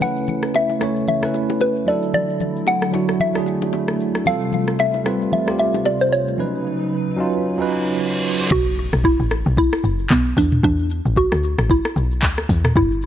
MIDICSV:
0, 0, Header, 1, 8, 480
1, 0, Start_track
1, 0, Tempo, 530973
1, 13, Time_signature, 4, 2, 24, 8
1, 11807, End_track
2, 0, Start_track
2, 0, Title_t, "Synth pluck"
2, 0, Program_c, 0, 84
2, 18, Note_on_c, 0, 78, 107
2, 503, Note_on_c, 0, 76, 103
2, 510, Note_off_c, 0, 78, 0
2, 970, Note_off_c, 0, 76, 0
2, 980, Note_on_c, 0, 76, 95
2, 1423, Note_off_c, 0, 76, 0
2, 1459, Note_on_c, 0, 71, 88
2, 1699, Note_on_c, 0, 74, 90
2, 1703, Note_off_c, 0, 71, 0
2, 1805, Note_off_c, 0, 74, 0
2, 1937, Note_on_c, 0, 74, 91
2, 2382, Note_off_c, 0, 74, 0
2, 2419, Note_on_c, 0, 78, 99
2, 2899, Note_on_c, 0, 76, 82
2, 2910, Note_off_c, 0, 78, 0
2, 3580, Note_off_c, 0, 76, 0
2, 3859, Note_on_c, 0, 77, 104
2, 4337, Note_on_c, 0, 76, 102
2, 4350, Note_off_c, 0, 77, 0
2, 4807, Note_off_c, 0, 76, 0
2, 4818, Note_on_c, 0, 76, 95
2, 5047, Note_off_c, 0, 76, 0
2, 5058, Note_on_c, 0, 76, 95
2, 5297, Note_on_c, 0, 74, 92
2, 5302, Note_off_c, 0, 76, 0
2, 5436, Note_on_c, 0, 72, 83
2, 5438, Note_off_c, 0, 74, 0
2, 5537, Note_on_c, 0, 73, 81
2, 5538, Note_off_c, 0, 72, 0
2, 6459, Note_off_c, 0, 73, 0
2, 7701, Note_on_c, 0, 66, 117
2, 8180, Note_on_c, 0, 64, 106
2, 8191, Note_off_c, 0, 66, 0
2, 8651, Note_off_c, 0, 64, 0
2, 8662, Note_on_c, 0, 64, 104
2, 9104, Note_off_c, 0, 64, 0
2, 9141, Note_on_c, 0, 59, 89
2, 9360, Note_off_c, 0, 59, 0
2, 9382, Note_on_c, 0, 62, 96
2, 9601, Note_off_c, 0, 62, 0
2, 9621, Note_on_c, 0, 62, 100
2, 10064, Note_off_c, 0, 62, 0
2, 10100, Note_on_c, 0, 66, 101
2, 10583, Note_on_c, 0, 64, 85
2, 10591, Note_off_c, 0, 66, 0
2, 11261, Note_off_c, 0, 64, 0
2, 11541, Note_on_c, 0, 64, 93
2, 11807, Note_off_c, 0, 64, 0
2, 11807, End_track
3, 0, Start_track
3, 0, Title_t, "Tine electric piano"
3, 0, Program_c, 1, 4
3, 0, Control_c, 1, 64, 127
3, 0, Note_on_c, 1, 57, 70
3, 8, Note_on_c, 1, 61, 68
3, 19, Note_on_c, 1, 64, 64
3, 25, Control_c, 1, 64, 0
3, 30, Note_on_c, 1, 71, 82
3, 174, Control_c, 1, 64, 127
3, 596, Note_off_c, 1, 57, 0
3, 602, Note_off_c, 1, 61, 0
3, 607, Note_off_c, 1, 64, 0
3, 613, Note_off_c, 1, 71, 0
3, 719, Note_on_c, 1, 57, 73
3, 730, Note_on_c, 1, 61, 64
3, 741, Note_on_c, 1, 64, 65
3, 751, Note_on_c, 1, 73, 80
3, 1021, Note_off_c, 1, 57, 0
3, 1027, Note_off_c, 1, 61, 0
3, 1033, Note_off_c, 1, 64, 0
3, 1038, Note_off_c, 1, 73, 0
3, 1096, Note_on_c, 1, 57, 69
3, 1107, Note_on_c, 1, 61, 66
3, 1117, Note_on_c, 1, 64, 66
3, 1127, Note_on_c, 1, 71, 78
3, 1677, Note_on_c, 1, 54, 75
3, 1685, Note_off_c, 1, 57, 0
3, 1687, Note_off_c, 1, 64, 0
3, 1688, Note_on_c, 1, 62, 67
3, 1690, Note_off_c, 1, 61, 0
3, 1698, Note_on_c, 1, 64, 63
3, 1701, Note_off_c, 1, 71, 0
3, 1702, Control_c, 1, 64, 0
3, 1710, Note_on_c, 1, 69, 82
3, 1851, Control_c, 1, 64, 127
3, 2460, Note_off_c, 1, 54, 0
3, 2466, Note_off_c, 1, 62, 0
3, 2471, Note_off_c, 1, 64, 0
3, 2477, Note_off_c, 1, 69, 0
3, 2635, Note_on_c, 1, 54, 72
3, 2646, Note_on_c, 1, 62, 65
3, 2657, Note_on_c, 1, 64, 64
3, 2667, Note_on_c, 1, 66, 81
3, 2940, Note_off_c, 1, 54, 0
3, 2945, Note_off_c, 1, 62, 0
3, 2950, Note_off_c, 1, 64, 0
3, 2956, Note_off_c, 1, 66, 0
3, 3014, Note_on_c, 1, 54, 70
3, 3025, Note_on_c, 1, 62, 66
3, 3036, Note_on_c, 1, 64, 65
3, 3047, Note_on_c, 1, 68, 76
3, 3688, Note_off_c, 1, 54, 0
3, 3693, Note_off_c, 1, 62, 0
3, 3698, Note_off_c, 1, 64, 0
3, 3704, Note_off_c, 1, 68, 0
3, 3835, Note_on_c, 1, 55, 74
3, 3847, Note_on_c, 1, 60, 68
3, 3857, Note_on_c, 1, 65, 70
3, 3865, Control_c, 1, 64, 0
3, 3868, Note_on_c, 1, 69, 84
3, 4033, Control_c, 1, 64, 127
3, 4435, Note_off_c, 1, 55, 0
3, 4441, Note_off_c, 1, 60, 0
3, 4446, Note_off_c, 1, 65, 0
3, 4452, Note_off_c, 1, 69, 0
3, 4555, Note_on_c, 1, 55, 72
3, 4567, Note_on_c, 1, 60, 68
3, 4577, Note_on_c, 1, 65, 66
3, 4588, Note_on_c, 1, 71, 77
3, 4860, Note_off_c, 1, 55, 0
3, 4866, Note_off_c, 1, 60, 0
3, 4870, Note_off_c, 1, 65, 0
3, 4876, Note_off_c, 1, 71, 0
3, 4936, Note_on_c, 1, 55, 73
3, 4946, Note_on_c, 1, 60, 64
3, 4957, Note_on_c, 1, 65, 66
3, 4969, Note_on_c, 1, 67, 77
3, 5608, Note_off_c, 1, 55, 0
3, 5613, Note_off_c, 1, 60, 0
3, 5619, Note_off_c, 1, 65, 0
3, 5625, Note_off_c, 1, 67, 0
3, 5756, Note_on_c, 1, 53, 58
3, 5766, Note_on_c, 1, 61, 68
3, 5777, Note_on_c, 1, 63, 68
3, 5785, Control_c, 1, 64, 0
3, 5787, Note_on_c, 1, 71, 82
3, 5813, Note_on_c, 1, 54, 75
3, 5831, Note_off_c, 1, 53, 0
3, 5954, Control_c, 1, 64, 127
3, 6361, Note_off_c, 1, 61, 0
3, 6366, Note_off_c, 1, 63, 0
3, 6371, Note_off_c, 1, 71, 0
3, 6384, Note_off_c, 1, 54, 0
3, 6478, Note_on_c, 1, 54, 89
3, 6489, Note_on_c, 1, 61, 79
3, 6499, Note_on_c, 1, 63, 78
3, 6510, Note_on_c, 1, 65, 97
3, 6781, Note_off_c, 1, 54, 0
3, 6786, Note_off_c, 1, 61, 0
3, 6791, Note_off_c, 1, 63, 0
3, 6797, Note_off_c, 1, 65, 0
3, 6855, Note_on_c, 1, 54, 85
3, 6865, Note_on_c, 1, 61, 79
3, 6876, Note_on_c, 1, 63, 79
3, 6887, Note_on_c, 1, 71, 97
3, 7528, Note_off_c, 1, 54, 0
3, 7533, Note_off_c, 1, 61, 0
3, 7538, Note_off_c, 1, 63, 0
3, 7544, Note_off_c, 1, 71, 0
3, 7705, Control_c, 1, 64, 0
3, 11807, End_track
4, 0, Start_track
4, 0, Title_t, "Analog synth pad"
4, 0, Program_c, 2, 89
4, 0, Note_on_c, 2, 49, 77
4, 0, Note_on_c, 2, 71, 86
4, 13, Note_on_c, 2, 57, 71
4, 14, Note_on_c, 2, 64, 71
4, 1655, Note_off_c, 2, 71, 0
4, 1656, Note_off_c, 2, 49, 0
4, 1676, Note_off_c, 2, 57, 0
4, 1689, Note_on_c, 2, 50, 79
4, 1691, Note_on_c, 2, 54, 73
4, 1691, Note_on_c, 2, 57, 89
4, 3817, Note_off_c, 2, 64, 0
4, 3829, Note_off_c, 2, 50, 0
4, 3830, Note_off_c, 2, 54, 0
4, 3852, Note_on_c, 2, 55, 71
4, 3852, Note_on_c, 2, 65, 75
4, 3853, Note_on_c, 2, 48, 78
4, 5736, Note_off_c, 2, 57, 0
4, 5753, Note_off_c, 2, 55, 0
4, 5753, Note_off_c, 2, 65, 0
4, 5754, Note_off_c, 2, 48, 0
4, 5772, Note_on_c, 2, 54, 71
4, 5773, Note_on_c, 2, 49, 79
4, 5773, Note_on_c, 2, 71, 88
4, 5774, Note_on_c, 2, 63, 75
4, 7673, Note_off_c, 2, 54, 0
4, 7674, Note_off_c, 2, 49, 0
4, 7674, Note_off_c, 2, 63, 0
4, 7674, Note_off_c, 2, 71, 0
4, 11807, End_track
5, 0, Start_track
5, 0, Title_t, "Log drum bass"
5, 0, Program_c, 3, 39
5, 7694, Note_on_c, 3, 35, 113
5, 8036, Note_off_c, 3, 35, 0
5, 8073, Note_on_c, 3, 35, 91
5, 8288, Note_off_c, 3, 35, 0
5, 8314, Note_on_c, 3, 33, 87
5, 8529, Note_off_c, 3, 33, 0
5, 8553, Note_on_c, 3, 35, 97
5, 8769, Note_off_c, 3, 35, 0
5, 8893, Note_on_c, 3, 30, 95
5, 9109, Note_off_c, 3, 30, 0
5, 9135, Note_on_c, 3, 35, 108
5, 9350, Note_off_c, 3, 35, 0
5, 9372, Note_on_c, 3, 40, 108
5, 9589, Note_off_c, 3, 40, 0
5, 9613, Note_on_c, 3, 40, 120
5, 9956, Note_off_c, 3, 40, 0
5, 9993, Note_on_c, 3, 33, 98
5, 10209, Note_off_c, 3, 33, 0
5, 10235, Note_on_c, 3, 38, 88
5, 10450, Note_off_c, 3, 38, 0
5, 10472, Note_on_c, 3, 33, 89
5, 10688, Note_off_c, 3, 33, 0
5, 10813, Note_on_c, 3, 35, 94
5, 11054, Note_on_c, 3, 38, 101
5, 11067, Note_off_c, 3, 35, 0
5, 11269, Note_off_c, 3, 38, 0
5, 11293, Note_on_c, 3, 40, 96
5, 11509, Note_off_c, 3, 40, 0
5, 11532, Note_on_c, 3, 31, 119
5, 11807, Note_off_c, 3, 31, 0
5, 11807, End_track
6, 0, Start_track
6, 0, Title_t, "Impact"
6, 0, Program_c, 4, 103
6, 7694, Note_on_c, 4, 60, 90
6, 9613, Note_off_c, 4, 60, 0
6, 11807, End_track
7, 0, Start_track
7, 0, Title_t, "Reverse cymbal"
7, 0, Program_c, 5, 119
7, 6734, Note_on_c, 5, 60, 82
7, 7693, Note_off_c, 5, 60, 0
7, 11807, End_track
8, 0, Start_track
8, 0, Title_t, "Drums"
8, 9, Note_on_c, 9, 82, 69
8, 11, Note_on_c, 9, 64, 71
8, 100, Note_off_c, 9, 82, 0
8, 102, Note_off_c, 9, 64, 0
8, 149, Note_on_c, 9, 82, 50
8, 239, Note_off_c, 9, 82, 0
8, 247, Note_on_c, 9, 82, 100
8, 253, Note_on_c, 9, 64, 72
8, 338, Note_off_c, 9, 82, 0
8, 343, Note_off_c, 9, 64, 0
8, 386, Note_on_c, 9, 37, 85
8, 394, Note_on_c, 9, 82, 51
8, 477, Note_off_c, 9, 37, 0
8, 484, Note_off_c, 9, 82, 0
8, 491, Note_on_c, 9, 60, 68
8, 495, Note_on_c, 9, 82, 68
8, 582, Note_off_c, 9, 60, 0
8, 586, Note_off_c, 9, 82, 0
8, 629, Note_on_c, 9, 61, 49
8, 630, Note_on_c, 9, 82, 56
8, 719, Note_off_c, 9, 61, 0
8, 720, Note_off_c, 9, 82, 0
8, 731, Note_on_c, 9, 82, 88
8, 732, Note_on_c, 9, 37, 91
8, 737, Note_on_c, 9, 61, 69
8, 821, Note_off_c, 9, 82, 0
8, 822, Note_off_c, 9, 37, 0
8, 827, Note_off_c, 9, 61, 0
8, 868, Note_on_c, 9, 82, 58
8, 959, Note_off_c, 9, 82, 0
8, 972, Note_on_c, 9, 82, 77
8, 974, Note_on_c, 9, 64, 70
8, 1062, Note_off_c, 9, 82, 0
8, 1064, Note_off_c, 9, 64, 0
8, 1110, Note_on_c, 9, 37, 94
8, 1111, Note_on_c, 9, 82, 60
8, 1201, Note_off_c, 9, 37, 0
8, 1201, Note_off_c, 9, 82, 0
8, 1210, Note_on_c, 9, 82, 98
8, 1213, Note_on_c, 9, 60, 45
8, 1300, Note_off_c, 9, 82, 0
8, 1303, Note_off_c, 9, 60, 0
8, 1351, Note_on_c, 9, 82, 46
8, 1354, Note_on_c, 9, 60, 45
8, 1354, Note_on_c, 9, 61, 65
8, 1442, Note_off_c, 9, 82, 0
8, 1444, Note_off_c, 9, 60, 0
8, 1444, Note_off_c, 9, 61, 0
8, 1447, Note_on_c, 9, 82, 67
8, 1452, Note_on_c, 9, 60, 69
8, 1538, Note_off_c, 9, 82, 0
8, 1542, Note_off_c, 9, 60, 0
8, 1588, Note_on_c, 9, 82, 53
8, 1678, Note_off_c, 9, 82, 0
8, 1697, Note_on_c, 9, 82, 88
8, 1788, Note_off_c, 9, 82, 0
8, 1832, Note_on_c, 9, 82, 53
8, 1923, Note_off_c, 9, 82, 0
8, 1932, Note_on_c, 9, 64, 68
8, 1932, Note_on_c, 9, 82, 71
8, 2022, Note_off_c, 9, 64, 0
8, 2022, Note_off_c, 9, 82, 0
8, 2073, Note_on_c, 9, 82, 48
8, 2163, Note_off_c, 9, 82, 0
8, 2171, Note_on_c, 9, 82, 98
8, 2173, Note_on_c, 9, 64, 74
8, 2261, Note_off_c, 9, 82, 0
8, 2264, Note_off_c, 9, 64, 0
8, 2317, Note_on_c, 9, 82, 51
8, 2407, Note_off_c, 9, 82, 0
8, 2410, Note_on_c, 9, 60, 69
8, 2418, Note_on_c, 9, 82, 71
8, 2501, Note_off_c, 9, 60, 0
8, 2508, Note_off_c, 9, 82, 0
8, 2550, Note_on_c, 9, 61, 48
8, 2551, Note_on_c, 9, 37, 91
8, 2551, Note_on_c, 9, 82, 55
8, 2640, Note_off_c, 9, 61, 0
8, 2641, Note_off_c, 9, 37, 0
8, 2641, Note_off_c, 9, 82, 0
8, 2652, Note_on_c, 9, 82, 84
8, 2655, Note_on_c, 9, 61, 71
8, 2742, Note_off_c, 9, 82, 0
8, 2745, Note_off_c, 9, 61, 0
8, 2790, Note_on_c, 9, 82, 56
8, 2792, Note_on_c, 9, 37, 88
8, 2880, Note_off_c, 9, 82, 0
8, 2882, Note_off_c, 9, 37, 0
8, 2892, Note_on_c, 9, 64, 72
8, 2894, Note_on_c, 9, 82, 74
8, 2983, Note_off_c, 9, 64, 0
8, 2984, Note_off_c, 9, 82, 0
8, 3032, Note_on_c, 9, 37, 91
8, 3033, Note_on_c, 9, 82, 61
8, 3123, Note_off_c, 9, 37, 0
8, 3123, Note_off_c, 9, 82, 0
8, 3130, Note_on_c, 9, 60, 44
8, 3131, Note_on_c, 9, 82, 103
8, 3220, Note_off_c, 9, 60, 0
8, 3222, Note_off_c, 9, 82, 0
8, 3273, Note_on_c, 9, 60, 48
8, 3273, Note_on_c, 9, 61, 67
8, 3273, Note_on_c, 9, 82, 46
8, 3363, Note_off_c, 9, 60, 0
8, 3363, Note_off_c, 9, 61, 0
8, 3363, Note_off_c, 9, 82, 0
8, 3369, Note_on_c, 9, 82, 73
8, 3370, Note_on_c, 9, 60, 73
8, 3460, Note_off_c, 9, 60, 0
8, 3460, Note_off_c, 9, 82, 0
8, 3506, Note_on_c, 9, 82, 55
8, 3509, Note_on_c, 9, 37, 85
8, 3597, Note_off_c, 9, 82, 0
8, 3600, Note_off_c, 9, 37, 0
8, 3616, Note_on_c, 9, 82, 84
8, 3706, Note_off_c, 9, 82, 0
8, 3752, Note_on_c, 9, 37, 93
8, 3752, Note_on_c, 9, 82, 55
8, 3843, Note_off_c, 9, 37, 0
8, 3843, Note_off_c, 9, 82, 0
8, 3850, Note_on_c, 9, 64, 73
8, 3852, Note_on_c, 9, 82, 69
8, 3940, Note_off_c, 9, 64, 0
8, 3942, Note_off_c, 9, 82, 0
8, 3993, Note_on_c, 9, 82, 50
8, 4084, Note_off_c, 9, 82, 0
8, 4089, Note_on_c, 9, 82, 98
8, 4091, Note_on_c, 9, 64, 75
8, 4179, Note_off_c, 9, 82, 0
8, 4182, Note_off_c, 9, 64, 0
8, 4228, Note_on_c, 9, 37, 81
8, 4236, Note_on_c, 9, 82, 54
8, 4319, Note_off_c, 9, 37, 0
8, 4326, Note_off_c, 9, 82, 0
8, 4330, Note_on_c, 9, 60, 71
8, 4337, Note_on_c, 9, 82, 71
8, 4421, Note_off_c, 9, 60, 0
8, 4427, Note_off_c, 9, 82, 0
8, 4467, Note_on_c, 9, 61, 51
8, 4471, Note_on_c, 9, 82, 58
8, 4557, Note_off_c, 9, 61, 0
8, 4561, Note_off_c, 9, 82, 0
8, 4572, Note_on_c, 9, 82, 83
8, 4573, Note_on_c, 9, 37, 88
8, 4574, Note_on_c, 9, 61, 68
8, 4662, Note_off_c, 9, 82, 0
8, 4663, Note_off_c, 9, 37, 0
8, 4664, Note_off_c, 9, 61, 0
8, 4711, Note_on_c, 9, 82, 58
8, 4802, Note_off_c, 9, 82, 0
8, 4812, Note_on_c, 9, 64, 69
8, 4814, Note_on_c, 9, 82, 71
8, 4902, Note_off_c, 9, 64, 0
8, 4905, Note_off_c, 9, 82, 0
8, 4952, Note_on_c, 9, 37, 92
8, 4952, Note_on_c, 9, 82, 61
8, 5042, Note_off_c, 9, 37, 0
8, 5043, Note_off_c, 9, 82, 0
8, 5050, Note_on_c, 9, 82, 104
8, 5051, Note_on_c, 9, 60, 43
8, 5140, Note_off_c, 9, 82, 0
8, 5141, Note_off_c, 9, 60, 0
8, 5192, Note_on_c, 9, 60, 48
8, 5192, Note_on_c, 9, 61, 70
8, 5192, Note_on_c, 9, 82, 49
8, 5283, Note_off_c, 9, 60, 0
8, 5283, Note_off_c, 9, 61, 0
8, 5283, Note_off_c, 9, 82, 0
8, 5289, Note_on_c, 9, 82, 71
8, 5292, Note_on_c, 9, 60, 73
8, 5379, Note_off_c, 9, 82, 0
8, 5383, Note_off_c, 9, 60, 0
8, 5428, Note_on_c, 9, 82, 51
8, 5518, Note_off_c, 9, 82, 0
8, 5538, Note_on_c, 9, 82, 87
8, 5629, Note_off_c, 9, 82, 0
8, 5675, Note_on_c, 9, 82, 55
8, 5766, Note_off_c, 9, 82, 0
8, 7692, Note_on_c, 9, 82, 79
8, 7693, Note_on_c, 9, 36, 114
8, 7693, Note_on_c, 9, 49, 104
8, 7783, Note_off_c, 9, 49, 0
8, 7783, Note_off_c, 9, 82, 0
8, 7784, Note_off_c, 9, 36, 0
8, 7835, Note_on_c, 9, 82, 55
8, 7925, Note_off_c, 9, 82, 0
8, 7934, Note_on_c, 9, 82, 111
8, 8024, Note_off_c, 9, 82, 0
8, 8074, Note_on_c, 9, 37, 91
8, 8081, Note_on_c, 9, 82, 55
8, 8164, Note_off_c, 9, 37, 0
8, 8171, Note_off_c, 9, 82, 0
8, 8173, Note_on_c, 9, 36, 85
8, 8181, Note_on_c, 9, 82, 76
8, 8263, Note_off_c, 9, 36, 0
8, 8271, Note_off_c, 9, 82, 0
8, 8314, Note_on_c, 9, 82, 61
8, 8405, Note_off_c, 9, 82, 0
8, 8416, Note_on_c, 9, 82, 94
8, 8418, Note_on_c, 9, 37, 97
8, 8507, Note_off_c, 9, 82, 0
8, 8508, Note_off_c, 9, 37, 0
8, 8555, Note_on_c, 9, 82, 62
8, 8645, Note_off_c, 9, 82, 0
8, 8654, Note_on_c, 9, 36, 118
8, 8658, Note_on_c, 9, 82, 78
8, 8744, Note_off_c, 9, 36, 0
8, 8748, Note_off_c, 9, 82, 0
8, 8794, Note_on_c, 9, 37, 101
8, 8795, Note_on_c, 9, 82, 69
8, 8885, Note_off_c, 9, 37, 0
8, 8886, Note_off_c, 9, 82, 0
8, 8893, Note_on_c, 9, 82, 109
8, 8983, Note_off_c, 9, 82, 0
8, 9032, Note_on_c, 9, 82, 50
8, 9123, Note_off_c, 9, 82, 0
8, 9128, Note_on_c, 9, 82, 74
8, 9133, Note_on_c, 9, 39, 108
8, 9135, Note_on_c, 9, 36, 102
8, 9219, Note_off_c, 9, 82, 0
8, 9223, Note_off_c, 9, 39, 0
8, 9225, Note_off_c, 9, 36, 0
8, 9270, Note_on_c, 9, 82, 60
8, 9360, Note_off_c, 9, 82, 0
8, 9373, Note_on_c, 9, 36, 93
8, 9379, Note_on_c, 9, 46, 77
8, 9379, Note_on_c, 9, 82, 93
8, 9464, Note_off_c, 9, 36, 0
8, 9470, Note_off_c, 9, 46, 0
8, 9470, Note_off_c, 9, 82, 0
8, 9512, Note_on_c, 9, 45, 96
8, 9514, Note_on_c, 9, 82, 59
8, 9602, Note_off_c, 9, 45, 0
8, 9604, Note_off_c, 9, 82, 0
8, 9613, Note_on_c, 9, 36, 120
8, 9613, Note_on_c, 9, 82, 75
8, 9703, Note_off_c, 9, 82, 0
8, 9704, Note_off_c, 9, 36, 0
8, 9754, Note_on_c, 9, 82, 54
8, 9844, Note_off_c, 9, 82, 0
8, 9851, Note_on_c, 9, 82, 106
8, 9941, Note_off_c, 9, 82, 0
8, 9998, Note_on_c, 9, 82, 58
8, 10089, Note_off_c, 9, 82, 0
8, 10092, Note_on_c, 9, 36, 85
8, 10100, Note_on_c, 9, 82, 76
8, 10182, Note_off_c, 9, 36, 0
8, 10191, Note_off_c, 9, 82, 0
8, 10233, Note_on_c, 9, 37, 103
8, 10233, Note_on_c, 9, 82, 63
8, 10324, Note_off_c, 9, 37, 0
8, 10324, Note_off_c, 9, 82, 0
8, 10333, Note_on_c, 9, 82, 94
8, 10424, Note_off_c, 9, 82, 0
8, 10471, Note_on_c, 9, 82, 60
8, 10473, Note_on_c, 9, 37, 103
8, 10562, Note_off_c, 9, 82, 0
8, 10564, Note_off_c, 9, 37, 0
8, 10573, Note_on_c, 9, 36, 116
8, 10575, Note_on_c, 9, 82, 80
8, 10663, Note_off_c, 9, 36, 0
8, 10665, Note_off_c, 9, 82, 0
8, 10714, Note_on_c, 9, 37, 98
8, 10714, Note_on_c, 9, 82, 67
8, 10804, Note_off_c, 9, 37, 0
8, 10805, Note_off_c, 9, 82, 0
8, 10811, Note_on_c, 9, 82, 108
8, 10901, Note_off_c, 9, 82, 0
8, 10952, Note_on_c, 9, 82, 52
8, 11042, Note_off_c, 9, 82, 0
8, 11047, Note_on_c, 9, 82, 79
8, 11051, Note_on_c, 9, 39, 108
8, 11054, Note_on_c, 9, 36, 104
8, 11137, Note_off_c, 9, 82, 0
8, 11142, Note_off_c, 9, 39, 0
8, 11144, Note_off_c, 9, 36, 0
8, 11188, Note_on_c, 9, 82, 56
8, 11191, Note_on_c, 9, 37, 94
8, 11279, Note_off_c, 9, 82, 0
8, 11282, Note_off_c, 9, 37, 0
8, 11293, Note_on_c, 9, 36, 89
8, 11298, Note_on_c, 9, 46, 79
8, 11298, Note_on_c, 9, 82, 93
8, 11383, Note_off_c, 9, 36, 0
8, 11389, Note_off_c, 9, 46, 0
8, 11389, Note_off_c, 9, 82, 0
8, 11431, Note_on_c, 9, 45, 97
8, 11433, Note_on_c, 9, 37, 104
8, 11433, Note_on_c, 9, 82, 62
8, 11521, Note_off_c, 9, 45, 0
8, 11523, Note_off_c, 9, 37, 0
8, 11523, Note_off_c, 9, 82, 0
8, 11531, Note_on_c, 9, 82, 82
8, 11532, Note_on_c, 9, 36, 112
8, 11621, Note_off_c, 9, 82, 0
8, 11623, Note_off_c, 9, 36, 0
8, 11672, Note_on_c, 9, 82, 55
8, 11763, Note_off_c, 9, 82, 0
8, 11770, Note_on_c, 9, 82, 110
8, 11807, Note_off_c, 9, 82, 0
8, 11807, End_track
0, 0, End_of_file